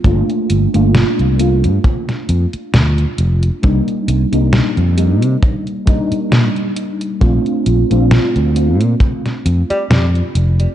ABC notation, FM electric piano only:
X:1
M:4/4
L:1/16
Q:"Swing 16ths" 1/4=67
K:Bb
V:1 name="FM electric piano"
[A,B,DF]3 [A,B,DF]3 [A,B,DF]8- [A,B,DF]2 | [G,B,DE] z2 [G,B,DE] z2 [G,B,DE]4 [G,B,DE]6 | [A,CDF]3 [A,CDF]3 [A,CDF]8- [A,CDF]2 |]